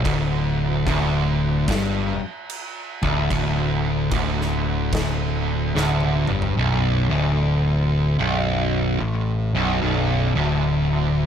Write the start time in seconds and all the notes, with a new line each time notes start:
0.04 D1 D2, kick, crash
0.87 D1 D2, kick, crash
1.68 G1 G2, kick, snare, crash
2.50 crash
3.02 D1 D2, kick
3.31 D1 D2, kick, crash
4.11 D1 D2, kick, crash
4.41 snare
4.93 D1 D2, kick, snare, crash
5.75 D1 D2, snare
6.00 high tom
6.27 G1 G2, mid tom
6.42 floor tom
6.56 B0 B1
7.09 D1 D2
8.19 B0 B1
9.00 A1 A2
9.53 B0 B1
9.81 B0 B1
10.35 D1 D2